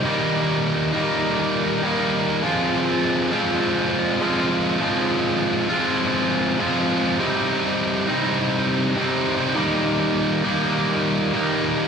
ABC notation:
X:1
M:4/4
L:1/8
Q:1/4=101
K:Fm
V:1 name="Distorted electric guitar"
[E,G,B,E]3 [E,G,B,E]3 [E,G,B,E]2 | [F,A,CF]3 [F,A,CF]3 [F,A,CF]2 | [F,A,CF]3 [F,A,CF]3 [F,A,CF]2 | [C,G,CE]3 [C,G,CE]3 [C,G,CE]2 |
[E,G,B,E]3 [E,G,B,E]3 [E,G,B,E]2 |]